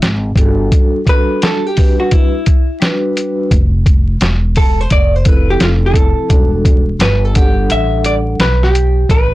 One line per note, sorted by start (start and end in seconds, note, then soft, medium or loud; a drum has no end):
0.02 0.35 G#1 medium
0.02 snare loud
0.02 closed hi-hat medium
0.36 0.70 G1 medium
0.36 0.96 G3 medium
0.36 0.96 D4 medium
0.36 0.97 F#4 medium
0.36 0.97 A4 medium
0.36 kick medium
0.36 closed hi-hat medium
0.72 kick loud
0.72 closed hi-hat medium
1.05 1.59 G3 medium
1.05 1.59 D4 medium
1.05 1.60 F#4 medium
1.05 1.60 A4 medium
1.05 kick medium
1.05 closed hi-hat medium
1.09 1.44 B4 loud
1.42 1.66 A4 medium
1.42 snare loud
1.42 closed hi-hat medium
1.66 1.99 G4 medium
1.75 2.29 G3 medium
1.75 2.29 D4 medium
1.75 2.30 F#4 medium
1.75 2.30 B4 medium
1.75 kick medium
1.75 open hi-hat medium
2.00 2.12 F#4 medium
2.11 2.82 E4 medium
2.11 kick medium
2.11 closed hi-hat medium
2.46 kick medium
2.46 closed hi-hat medium
2.80 3.50 G3 medium
2.80 3.51 D4 medium
2.80 3.51 F#4 medium
2.80 3.51 B4 medium
2.80 snare loud
2.80 closed hi-hat medium
3.17 closed hi-hat medium
3.51 4.17 F1 loud
3.51 kick medium
3.51 closed hi-hat medium
3.86 kick medium
3.86 closed hi-hat medium
4.21 4.87 E1 medium
4.21 snare loud
4.21 closed hi-hat medium
4.56 4.81 A4 medium
4.56 kick medium
4.56 open hi-hat medium
4.81 4.92 C5 medium
4.90 5.57 F1 loud
4.90 5.16 D5 loud
4.90 kick medium
4.90 closed hi-hat medium
5.16 5.28 C5 medium
5.24 6.24 F3 medium
5.24 6.25 C4 medium
5.24 6.25 E4 medium
5.24 6.26 A4 medium
5.24 kick medium
5.24 closed hi-hat medium
5.28 5.50 B4 medium
5.50 5.62 G4 medium
5.60 6.15 F1 medium
5.60 5.69 F4 medium
5.60 snare loud
5.60 closed hi-hat medium
5.86 6.50 A4 medium
5.94 kick medium
5.94 closed hi-hat medium
6.18 muted upright bass stroke soft
6.29 6.96 E1 medium
6.29 6.82 G3 medium
6.29 6.83 D4 medium
6.29 6.83 F#4 medium
6.29 6.83 A4 medium
6.29 kick loud
6.29 closed hi-hat medium
6.65 kick medium
6.65 closed hi-hat medium
6.99 7.66 G1 medium
6.99 7.25 B4 medium
6.99 snare loud
6.99 closed hi-hat loud
7.25 7.37 A4 medium
7.33 8.34 G3 medium
7.33 8.34 D4 medium
7.33 8.35 A4 medium
7.33 8.34 F#5 medium
7.33 kick medium
7.33 closed hi-hat medium
7.37 7.72 G4 medium
7.70 8.36 A1 loud
7.70 8.05 E5 loud
7.70 closed hi-hat medium
8.04 8.15 D5 medium
8.04 closed hi-hat medium
8.39 9.06 B1 medium
8.39 8.63 B4 medium
8.39 snare loud
8.39 closed hi-hat medium
8.63 9.07 G4 medium
8.63 snare soft
8.75 closed hi-hat medium
9.09 9.34 A1 loud
9.09 9.34 B4 loud
9.09 kick loud
9.09 closed hi-hat medium